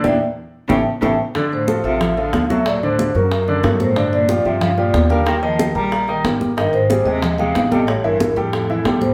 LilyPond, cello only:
\new Staff \with { instrumentName = "Cello" } { \clef bass \time 4/4 \key d \minor \tempo 4 = 184 bes,8 r4. cis8 r8 cis8 r8 | f,8 a,4 c4 d4 c8 | bes,8 a,4 fis,2 a,8~ | a,8 bes,4 c8 d8 bes,4 d8 |
ees8 f4 g4. r4 | g,8 aes,4 c4 c4 c8 | a,8 g,4 f,2 a,8 | }